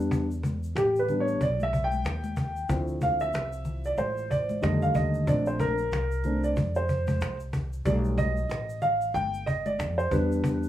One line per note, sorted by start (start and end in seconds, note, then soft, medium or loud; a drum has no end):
0.00 0.72 E2 loud
0.00 0.24 G3 medium
0.00 0.25 B3 medium
0.00 0.25 D4 medium
0.00 shaker medium
0.11 cajon bass loud
0.11 shaker medium
0.31 shaker soft
0.43 cajon bass medium
0.43 high conga soft
0.43 shaker soft
0.63 shaker medium
0.75 1.37 A1 loud
0.75 0.99 G4 medium
0.75 cajon slap loud
0.75 shaker medium
0.96 1.20 B4 medium
0.96 shaker soft
1.09 1.38 G3 soft
1.09 1.38 B3 soft
1.09 1.38 D4 medium
1.09 cajon slap soft
1.09 low conga medium
1.09 shaker soft
1.20 1.42 C#5 medium
1.28 shaker medium
1.41 2.02 B1 medium
1.41 1.63 D5 medium
1.41 cajon bass medium
1.41 shaker medium
1.60 1.82 E5 loud
1.60 high conga medium
1.60 shaker soft
1.73 cajon bass medium
1.73 shaker soft
1.84 2.76 G5 loud
1.92 high conga medium
1.92 shaker soft
2.05 2.66 D#2 medium
2.05 cajon slap loud
2.05 shaker medium
2.24 high conga medium
2.24 shaker medium
2.36 cajon bass medium
2.36 low conga medium
2.36 shaker soft
2.56 shaker soft
2.69 3.31 D2 loud
2.69 4.59 F3 medium
2.69 4.59 C4 soft
2.69 4.59 E4 medium
2.69 cajon bass loud
2.69 shaker medium
2.87 shaker soft
3.01 3.20 F5 medium
3.01 cajon bass medium
3.01 high conga soft
3.01 shaker soft
3.20 3.87 E5 medium
3.20 shaker soft
3.33 3.95 C2 medium
3.33 cajon slap loud
3.33 shaker medium
3.52 shaker soft
3.65 cajon slap soft
3.65 low conga medium
3.65 shaker soft
3.84 3.99 D5 medium
3.84 shaker soft
3.98 4.59 A1 medium
3.98 4.32 C5 medium
3.98 cajon slap soft
3.98 high conga soft
3.98 shaker medium
4.17 shaker soft
4.30 4.64 D5 loud
4.30 cajon bass medium
4.30 shaker soft
4.49 high conga medium
4.49 shaker soft
4.62 4.93 F2 medium
4.62 5.24 D3 medium
4.62 5.24 D#3 medium
4.62 5.24 G3 soft
4.62 5.24 A3 medium
4.62 4.80 D#5 medium
4.62 cajon slap loud
4.62 shaker medium
4.82 4.96 F5 loud
4.82 shaker soft
4.94 5.26 D#2 medium
4.94 5.28 D#5 medium
4.94 cajon bass loud
4.94 low conga medium
4.94 shaker medium
5.14 shaker medium
5.27 5.89 A#1 loud
5.27 5.72 A3 medium
5.27 5.73 C4 medium
5.27 5.73 D4 medium
5.27 5.45 D5 medium
5.27 cajon bass loud
5.27 shaker medium
5.46 5.60 C5 medium
5.46 shaker soft
5.59 6.39 A#4 loud
5.59 cajon bass medium
5.59 high conga soft
5.59 shaker soft
5.78 shaker medium
5.92 6.53 C2 medium
5.92 cajon slap loud
5.92 shaker medium
6.11 shaker soft
6.24 6.54 A3 soft
6.24 6.54 C4 soft
6.24 6.54 D4 medium
6.24 cajon slap soft
6.24 low conga medium
6.24 shaker soft
6.44 6.77 D5 medium
6.44 shaker medium
6.56 7.18 F2 loud
6.56 cajon bass loud
6.56 high conga soft
6.56 shaker medium
6.75 7.36 C5 medium
6.75 shaker soft
6.89 cajon bass medium
6.89 shaker soft
7.07 cajon bass medium
7.07 high conga medium
7.07 shaker soft
7.21 7.82 C2 medium
7.21 cajon slap loud
7.21 shaker medium
7.40 shaker soft
7.53 cajon bass loud
7.53 low conga medium
7.53 shaker soft
7.73 shaker medium
7.85 8.47 B1 loud
7.85 8.30 G3 medium
7.85 8.31 A3 medium
7.85 8.31 D#4 medium
7.85 7.93 D5 medium
7.85 cajon bass loud
7.85 shaker medium
8.04 shaker soft
8.18 8.84 D#5 loud
8.18 cajon bass medium
8.18 high conga soft
8.18 shaker soft
8.37 shaker soft
8.49 9.11 A1 medium
8.49 cajon slap loud
8.49 shaker medium
8.69 shaker soft
8.82 9.12 F5 loud
8.82 cajon slap soft
8.82 low conga medium
8.82 shaker soft
9.01 shaker medium
9.14 9.80 G1 loud
9.14 9.48 G5 loud
9.14 cajon slap medium
9.14 high conga soft
9.14 shaker medium
9.34 shaker soft
9.46 9.66 D#5 medium
9.46 cajon bass medium
9.46 shaker soft
9.66 9.96 D5 medium
9.66 high conga medium
9.66 shaker soft
9.79 10.10 F2 medium
9.79 cajon slap loud
9.79 shaker medium
9.98 10.12 C5 medium
9.98 shaker medium
10.11 10.69 E2 loud
10.11 10.69 G3 medium
10.11 10.69 B3 medium
10.11 10.69 D4 medium
10.11 10.69 B4 medium
10.11 cajon bass loud
10.11 low conga medium
10.11 shaker medium
10.32 shaker soft
10.44 cajon bass loud
10.44 shaker medium
10.63 shaker soft